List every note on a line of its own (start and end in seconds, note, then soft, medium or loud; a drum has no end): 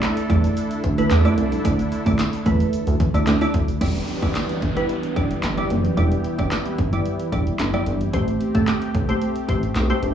0.00 3.77 D3 medium
0.00 0.12 A3 medium
0.00 3.77 D4 medium
0.00 0.12 E4 medium
0.00 3.77 E4 medium
0.00 3.77 A4 medium
0.00 0.12 D5 loud
0.00 snare loud
0.00 clap loud
0.00 closed hi-hat medium
0.00 shaker medium
0.17 closed hi-hat medium
0.17 shaker soft
0.29 0.47 E2 loud
0.29 0.68 A3 medium
0.29 0.68 E4 medium
0.29 0.68 D5 loud
0.29 kick medium
0.29 closed hi-hat medium
0.29 shaker medium
0.44 closed hi-hat medium
0.44 shaker soft
0.57 closed hi-hat loud
0.57 shaker medium
0.71 closed hi-hat medium
0.71 shaker medium
0.84 1.01 D2 medium
0.84 kick medium
0.84 closed hi-hat medium
0.98 1.12 A3 medium
0.98 1.12 E4 medium
0.98 1.13 B4 medium
0.98 closed hi-hat medium
0.98 shaker medium
1.11 1.28 E2 medium
1.11 snare medium
1.11 clap loud
1.11 closed hi-hat medium
1.11 shaker medium
1.25 1.47 A3 medium
1.25 1.47 E4 medium
1.25 1.47 D5 loud
1.25 closed hi-hat soft
1.25 shaker soft
1.38 1.55 C2 medium
1.38 closed hi-hat medium
1.52 closed hi-hat medium
1.52 shaker medium
1.65 1.82 D2 loud
1.65 1.88 A3 medium
1.65 1.88 E4 medium
1.65 1.88 D5 loud
1.65 kick loud
1.65 closed hi-hat loud
1.65 shaker medium
1.79 closed hi-hat medium
1.79 shaker soft
1.92 closed hi-hat medium
1.92 shaker medium
2.06 2.14 D2 loud
2.06 2.28 A3 medium
2.06 2.28 E4 medium
2.06 2.29 D5 loud
2.06 kick loud
2.06 closed hi-hat medium
2.06 shaker medium
2.19 snare loud
2.19 clap loud
2.19 closed hi-hat medium
2.19 shaker medium
2.33 closed hi-hat medium
2.33 shaker soft
2.46 2.63 E2 medium
2.46 2.84 A3 medium
2.46 2.84 E4 medium
2.46 2.84 B4 loud
2.46 kick medium
2.46 closed hi-hat medium
2.46 shaker medium
2.60 closed hi-hat medium
2.60 shaker medium
2.73 closed hi-hat loud
2.73 shaker medium
2.87 2.95 D2 medium
2.87 closed hi-hat medium
2.87 shaker soft
3.00 3.09 E2 medium
3.00 kick medium
3.00 closed hi-hat medium
3.14 3.22 D2 medium
3.14 3.28 A3 medium
3.14 3.29 E4 medium
3.14 3.29 D5 medium
3.14 closed hi-hat medium
3.14 shaker medium
3.27 3.36 D2 medium
3.27 snare medium
3.27 clap loud
3.27 closed hi-hat medium
3.27 shaker medium
3.41 3.64 A3 medium
3.41 3.64 E4 medium
3.41 3.64 D5 loud
3.41 closed hi-hat medium
3.41 shaker medium
3.54 3.71 D2 medium
3.54 kick loud
3.54 closed hi-hat medium
3.68 closed hi-hat medium
3.68 shaker medium
3.81 3.98 E1 loud
3.81 8.10 E3 medium
3.81 4.04 G3 medium
3.81 8.10 B3 medium
3.81 5.95 D4 medium
3.81 4.04 E4 medium
3.81 8.10 G4 medium
3.81 4.04 D5 medium
3.81 kick loud
3.81 closed hi-hat medium
3.81 crash medium
3.81 downlifter medium
3.95 closed hi-hat medium
4.08 closed hi-hat medium
4.22 4.30 E1 loud
4.22 4.52 G3 medium
4.22 4.52 E4 medium
4.22 4.52 D5 medium
4.22 kick medium
4.22 closed hi-hat medium
4.35 snare loud
4.35 clap loud
4.35 closed hi-hat medium
4.49 closed hi-hat medium
4.62 4.79 G1 loud
4.62 kick medium
4.62 closed hi-hat medium
4.76 4.99 G3 medium
4.76 4.99 E4 medium
4.76 4.99 B4 medium
4.76 closed hi-hat medium
4.89 closed hi-hat medium
5.03 closed hi-hat medium
5.16 5.33 E1 medium
5.16 5.39 G3 medium
5.16 5.39 E4 medium
5.16 5.39 D5 loud
5.16 kick medium
5.16 closed hi-hat medium
5.31 closed hi-hat medium
5.43 5.60 G1 loud
5.43 snare medium
5.43 clap loud
5.43 closed hi-hat medium
5.57 5.80 G3 medium
5.57 5.80 E4 medium
5.57 5.80 D5 loud
5.57 closed hi-hat soft
5.70 5.87 F#1 medium
5.70 closed hi-hat medium
5.85 closed hi-hat medium
5.97 6.14 E1 loud
5.97 6.20 G3 medium
5.97 6.20 E4 medium
5.97 8.12 E4 medium
5.97 6.20 D5 medium
5.97 closed hi-hat medium
6.12 closed hi-hat medium
6.24 closed hi-hat medium
6.38 6.47 E1 loud
6.38 6.68 G3 medium
6.38 6.68 E4 medium
6.38 6.69 D5 medium
6.38 kick medium
6.38 closed hi-hat medium
6.51 snare loud
6.51 clap loud
6.51 closed hi-hat medium
6.66 closed hi-hat medium
6.78 6.95 G1 loud
6.78 kick medium
6.78 closed hi-hat medium
6.93 7.15 G3 medium
6.93 7.15 E4 medium
6.93 7.15 D5 medium
6.93 closed hi-hat medium
7.06 closed hi-hat medium
7.20 closed hi-hat medium
7.32 7.49 E1 loud
7.32 7.55 G3 medium
7.32 7.55 E4 medium
7.32 7.55 D5 loud
7.32 kick medium
7.32 closed hi-hat medium
7.47 closed hi-hat soft
7.59 7.76 G1 medium
7.59 snare medium
7.59 clap loud
7.59 closed hi-hat medium
7.74 7.96 G3 medium
7.74 7.96 E4 medium
7.74 7.96 D5 loud
7.74 closed hi-hat soft
7.86 8.03 G1 medium
7.86 closed hi-hat medium
8.01 closed hi-hat medium
8.13 8.30 A1 loud
8.13 8.36 A3 medium
8.13 10.14 A3 medium
8.13 10.14 C4 medium
8.13 10.14 G4 medium
8.13 8.36 G4 medium
8.13 8.36 C5 loud
8.13 kick loud
8.13 closed hi-hat loud
8.28 closed hi-hat medium
8.41 closed hi-hat medium
8.55 8.63 A1 loud
8.55 8.85 A3 medium
8.55 8.85 G4 medium
8.55 8.85 A4 loud
8.55 kick medium
8.55 closed hi-hat medium
8.68 snare loud
8.68 clap loud
8.68 closed hi-hat medium
8.82 closed hi-hat medium
8.95 9.11 B1 loud
8.95 kick medium
8.95 closed hi-hat medium
9.09 9.31 A3 medium
9.09 9.31 G4 medium
9.09 9.31 C5 loud
9.09 closed hi-hat medium
9.22 closed hi-hat medium
9.36 closed hi-hat medium
9.48 9.65 A1 medium
9.48 9.71 A3 medium
9.48 9.71 G4 medium
9.48 9.72 C5 loud
9.48 kick medium
9.48 closed hi-hat medium
9.63 closed hi-hat soft
9.75 9.92 B1 medium
9.75 snare medium
9.75 clap loud
9.75 closed hi-hat medium
9.90 10.12 A3 medium
9.90 10.12 G4 medium
9.90 10.12 C5 loud
9.90 closed hi-hat soft
10.03 10.14 G1 medium
10.03 closed hi-hat medium